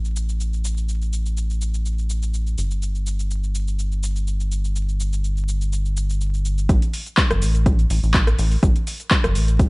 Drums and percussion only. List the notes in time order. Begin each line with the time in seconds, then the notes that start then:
0.05 cabasa
0.16 cabasa
0.29 cabasa
0.40 cabasa
0.53 cabasa
0.65 cabasa
0.77 cabasa
0.89 cabasa
1.02 cabasa
1.13 cabasa
1.26 cabasa
1.37 cabasa
1.50 cabasa
1.61 cabasa
1.74 cabasa
1.86 cabasa
1.98 cabasa
2.10 cabasa
2.23 cabasa
2.34 cabasa
2.47 cabasa
2.58 cabasa
2.71 cabasa
2.82 cabasa
2.95 cabasa
3.06 cabasa
3.19 cabasa
3.31 cabasa
3.44 cabasa
3.55 cabasa
3.68 cabasa
3.79 cabasa
3.92 cabasa
4.03 cabasa
4.16 cabasa
4.27 cabasa
4.40 cabasa
4.52 cabasa
4.65 cabasa
4.76 cabasa
4.89 cabasa
5.00 cabasa
5.13 cabasa
5.24 cabasa
5.37 cabasa
5.48 cabasa
5.61 cabasa
5.73 cabasa
5.85 cabasa
5.97 cabasa
6.10 cabasa
6.21 cabasa
6.34 cabasa
6.45 cabasa
6.58 cabasa
6.69 kick, closed hi-hat, cabasa
6.82 closed hi-hat, cabasa
6.93 open hi-hat, cabasa
7.06 closed hi-hat, cabasa
7.17 kick, clap, closed hi-hat, cabasa
7.30 cross-stick, closed hi-hat, cabasa
7.42 open hi-hat, cabasa
7.55 closed hi-hat, cabasa
7.66 kick, closed hi-hat, cabasa
7.79 closed hi-hat, cabasa
7.90 open hi-hat, cabasa
8.03 cabasa
8.14 kick, clap, closed hi-hat, cabasa
8.27 cross-stick, closed hi-hat, cabasa
8.39 open hi-hat, cabasa
8.51 open hi-hat, cabasa
8.63 kick, closed hi-hat, cabasa
8.76 closed hi-hat, cabasa
8.87 open hi-hat, cabasa
9.00 closed hi-hat, cabasa
9.11 kick, clap, closed hi-hat, cabasa
9.24 cross-stick, closed hi-hat, cabasa
9.35 open hi-hat, cabasa
9.48 closed hi-hat, cabasa
9.60 kick, closed hi-hat, cabasa